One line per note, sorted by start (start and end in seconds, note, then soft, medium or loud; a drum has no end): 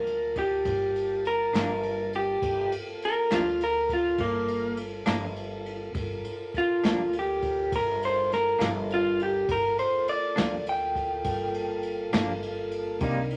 0.00 0.61 D2 medium
0.00 2.39 A#3 medium
0.00 2.38 F4 medium
0.00 0.35 A#4 medium
0.00 2.39 A5 medium
0.07 ride soft
0.35 1.23 G4 medium
0.35 kick medium
0.35 ride medium
0.65 1.50 G1 medium
0.65 kick medium
0.65 ride medium
0.96 ride soft
1.25 2.12 A#4 medium
1.25 ride soft
1.53 2.38 G1 medium
1.53 1.72 G2 soft
1.53 1.72 F3 soft
1.53 1.72 A#3 medium
1.53 1.71 D4 medium
1.53 snare loud
1.53 ride medium
1.83 ride medium
2.13 2.72 G4 medium
2.13 ride medium
2.42 2.69 G1 medium
2.42 5.93 A#3 medium
2.42 5.93 F4 medium
2.42 5.92 A4 medium
2.42 kick medium
2.42 ride medium
2.72 ride medium
3.02 3.32 A#4 medium
3.02 ride medium
3.30 4.15 D2 medium
3.30 3.49 G2 soft
3.30 3.49 F3 soft
3.30 3.48 A#3 medium
3.30 3.48 D4 medium
3.30 3.61 F4 medium
3.30 snare medium
3.30 ride medium
3.60 3.91 A#4 medium
3.60 ride medium
3.89 kick medium
3.89 ride medium
3.93 4.20 F4 medium
4.18 5.03 G1 medium
4.18 4.77 A#3 medium
4.18 kick medium
4.18 ride medium
4.48 ride medium
4.77 ride medium
5.06 5.92 G1 medium
5.06 5.25 G2 medium
5.06 5.25 F3 medium
5.06 5.25 A#3 medium
5.06 5.24 D4 medium
5.06 snare loud
5.06 ride medium
5.36 ride soft
5.66 ride soft
5.94 6.22 G1 medium
5.94 kick medium
5.94 ride medium
5.99 9.47 F4 medium
5.99 9.47 A4 medium
5.99 9.47 A#4 medium
6.24 ride medium
6.54 7.13 F4 medium
6.54 kick medium
6.54 ride soft
6.83 7.68 D2 medium
6.83 7.02 G2 medium
6.83 7.02 F3 medium
6.83 7.02 A#3 medium
6.83 7.02 D4 medium
6.83 snare medium
6.83 ride medium
7.13 ride medium
7.19 7.73 G4 medium
7.42 kick medium
7.42 ride medium
7.72 8.57 G1 medium
7.72 8.03 A#4 medium
7.72 kick medium
7.72 ride medium
8.02 8.32 C5 medium
8.02 ride medium
8.32 8.61 A#4 medium
8.32 snare soft
8.32 ride medium
8.59 9.45 G1 medium
8.59 8.78 G2 soft
8.59 8.78 F3 medium
8.59 8.78 A#3 medium
8.59 8.77 D4 medium
8.59 snare medium
8.59 ride medium
8.90 9.21 F4 medium
8.90 ride medium
9.19 9.50 G4 medium
9.19 ride soft
9.48 9.76 G1 medium
9.48 12.99 A#3 medium
9.48 12.99 F4 medium
9.48 12.99 A4 medium
9.48 9.79 A#4 medium
9.48 kick medium
9.48 ride medium
9.78 10.07 C5 medium
9.78 ride medium
10.08 10.66 D5 medium
10.08 ride soft
10.36 11.21 D2 medium
10.36 10.56 G2 soft
10.36 10.55 F3 medium
10.36 10.55 A#3 medium
10.36 10.54 D4 medium
10.36 snare medium
10.36 ride medium
10.66 12.41 G5 medium
10.66 ride medium
10.95 kick medium
10.95 ride medium
11.24 12.09 G1 medium
11.24 kick medium
11.24 ride medium
11.54 ride medium
11.83 ride medium
12.13 12.98 G1 medium
12.13 12.32 G2 medium
12.13 12.32 F3 medium
12.13 12.31 A#3 medium
12.13 12.31 D4 medium
12.13 snare loud
12.13 ride medium
12.42 ride medium
12.71 ride medium
13.00 13.28 C2 medium
13.00 13.19 C3 medium
13.00 13.20 G3 medium
13.00 13.20 A#3 medium
13.00 13.37 D4 medium
13.00 13.37 D#4 medium
13.00 13.20 D#4 medium
13.00 13.37 A#4 medium
13.00 kick loud
13.00 ride medium
13.30 ride medium